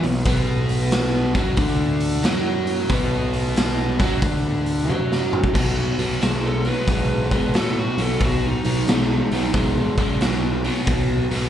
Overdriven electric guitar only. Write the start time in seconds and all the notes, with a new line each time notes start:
0.05 B2
0.26 B2 B3
1.35 F#3 F#4
1.58 D3 D4
2.24 F#3 F#4
2.90 B2 B3
4.00 F#3 F#4
4.23 D3 D4
4.89 F#3 F#4
5.54 B2 F#3
5.99 B2 F#3
6.22 B2 G#3
6.65 B2 F#3
6.89 B2 G#3
7.32 B2 G#3
7.55 B2 F#3
7.99 B2 F#3
8.22 B2 F#3
8.66 B2 F#3
8.88 B2 G#3
9.32 B2 F#3
9.55 B2 G#3
9.99 B2 G#3
10.21 B2 F#3
10.65 B2 F#3
10.87 B2 F#3
11.32 B2 F#3